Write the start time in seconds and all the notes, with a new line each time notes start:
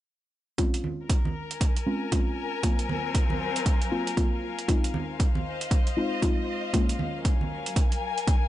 0.58 G#3 C4 C#4 F4, kick, closed hi-hat
0.74 closed hi-hat
0.84 high conga
1.04 A#4
1.10 kick, closed hi-hat
1.25 high conga
1.51 G#5, closed hi-hat
1.61 kick, closed hi-hat
1.77 closed hi-hat
1.86 G#3 C4 C#4 F4
2.12 G#3 C4 C#4 F4, kick, closed hi-hat
2.63 F#3 A#3 C4 F4, kick, closed hi-hat
2.76 F#3, closed hi-hat
2.89 high conga
3.15 F5, kick, closed hi-hat
3.30 high conga
3.56 closed hi-hat
3.66 kick, closed hi-hat
3.82 closed hi-hat
3.92 F#3 A#3 C4 F4
4.07 closed hi-hat
4.17 F#3 A#3 C4 F4, kick, closed hi-hat
4.59 closed hi-hat
4.68 G#3 C4 D#4 F4, kick, closed hi-hat
4.84 closed hi-hat
4.94 high conga
5.01 C5
5.20 kick, closed hi-hat
5.35 high conga
5.42 D#5
5.61 closed hi-hat
5.71 kick, closed hi-hat
5.87 closed hi-hat
5.97 G#3 C4 D#4 F4
6.22 G#3 C4 D#4 F4, kick, closed hi-hat
6.74 F#3 G#3 A#3 C#4 F4, kick, closed hi-hat
6.89 closed hi-hat
6.99 high conga
7.13 A#4
7.23 G#5, kick, closed hi-hat
7.41 high conga
7.66 closed hi-hat
7.76 kick, closed hi-hat
7.92 closed hi-hat
8.18 closed hi-hat
8.27 kick, closed hi-hat